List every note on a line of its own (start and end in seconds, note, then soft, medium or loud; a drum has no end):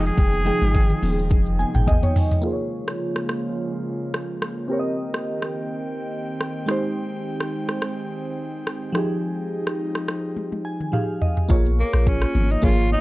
0.00 0.11 F1 loud
0.00 2.40 C3 medium
0.00 2.41 D#3 medium
0.00 0.35 F3 medium
0.00 2.42 F3 medium
0.00 2.40 G#3 medium
0.00 0.36 D#4 medium
0.00 2.40 D#4 medium
0.00 0.36 G#4 medium
0.00 0.36 G5 medium
0.05 1.15 G#4 loud
0.05 shaker medium
0.18 0.51 F1 loud
0.18 kick loud
0.18 high tom medium
0.18 shaker medium
0.33 high conga soft
0.33 shaker medium
0.45 1.32 F3 medium
0.45 1.33 D#4 medium
0.45 1.34 G#4 medium
0.45 1.33 G5 medium
0.45 high tom medium
0.45 shaker medium
0.61 0.93 G#1 medium
0.61 high tom medium
0.61 shaker medium
0.74 kick loud
0.74 mid tom medium
0.74 shaker medium
0.90 mid tom medium
0.90 shaker medium
1.03 1.32 D#1 medium
1.03 open hi-hat medium
1.03 high conga medium
1.03 low conga medium
1.03 shaker medium
1.19 shaker medium
1.30 1.64 F1 loud
1.30 kick loud
1.30 low conga medium
1.30 shaker medium
1.46 shaker medium
1.59 1.74 G#5 medium
1.59 high conga medium
1.59 shaker soft
1.75 1.96 G#1 medium
1.75 1.87 G5 medium
1.75 mid tom medium
1.75 shaker medium
1.87 2.02 D#5 medium
1.87 kick loud
1.87 floor tom loud
1.87 high conga medium
1.87 shaker medium
2.03 2.41 C#5 medium
2.03 floor tom medium
2.03 high conga medium
2.03 shaker medium
2.16 floor tom loud
2.16 open hi-hat medium
2.16 shaker medium
2.31 floor tom medium
2.31 shaker medium
2.42 4.68 C#3 medium
2.42 4.68 F3 medium
2.42 4.68 G#3 medium
2.42 4.65 A#3 medium
2.42 6.65 A#3 medium
2.42 4.66 F4 medium
2.42 4.68 F4 medium
2.42 4.67 G#4 medium
2.47 2.52 C5 medium
2.53 4.71 C#5 medium
2.88 cross-stick medium
3.16 cross-stick medium
3.29 cross-stick medium
4.14 cross-stick medium
4.42 cross-stick medium
4.68 8.91 D#3 medium
4.68 6.63 C4 medium
4.68 11.46 C4 medium
4.68 6.64 G4 medium
4.68 6.65 A#4 medium
4.68 11.46 G5 medium
4.73 4.79 C#5 medium
4.79 6.69 D#5 medium
5.14 cross-stick medium
5.42 cross-stick medium
6.41 cross-stick medium
6.66 8.90 G#3 medium
6.66 11.46 G#3 medium
6.66 8.91 D#4 medium
6.66 8.91 G4 medium
6.66 cross-stick medium
6.71 8.92 C5 medium
7.40 cross-stick medium
7.69 cross-stick medium
7.82 cross-stick medium
8.67 cross-stick medium
8.92 10.88 F3 medium
8.92 11.47 F3 medium
8.92 10.89 D#4 medium
8.92 11.47 D#4 medium
8.92 10.90 G4 medium
8.92 cross-stick medium
8.97 10.90 G#4 medium
9.67 cross-stick medium
9.95 cross-stick medium
10.08 cross-stick medium
10.37 high tom medium
10.52 high tom soft
10.65 10.91 G#5 medium
10.81 mid tom medium
10.92 11.49 F3 medium
10.92 11.50 D#4 medium
10.92 11.50 G4 medium
10.92 11.49 G#4 medium
10.92 11.19 F5 medium
10.92 mid tom medium
11.22 11.48 D#5 medium
11.22 floor tom medium
11.37 floor tom medium
11.48 11.83 A#1 loud
11.48 12.36 A#3 medium
11.48 12.37 F4 medium
11.48 12.37 G#4 medium
11.48 12.37 C#5 medium
11.48 kick loud
11.48 shaker medium
11.65 high conga soft
11.65 shaker medium
11.79 12.09 A#3 medium
11.93 12.25 A#1 medium
11.93 cross-stick medium
11.93 shaker medium
12.07 12.53 C#4 medium
12.07 kick loud
12.07 shaker medium
12.22 cross-stick medium
12.22 shaker medium
12.35 12.56 G#1 medium
12.35 high conga medium
12.35 low conga medium
12.35 shaker medium
12.51 12.66 D#4 loud
12.51 shaker medium
12.62 12.96 G#1 loud
12.62 13.01 A#3 medium
12.62 13.01 F4 medium
12.62 12.92 F4 loud
12.62 13.01 G#4 medium
12.62 13.01 C#5 medium
12.62 kick loud
12.62 low conga medium
12.62 shaker medium
12.78 shaker medium
12.92 13.01 D#4 loud
12.92 high conga medium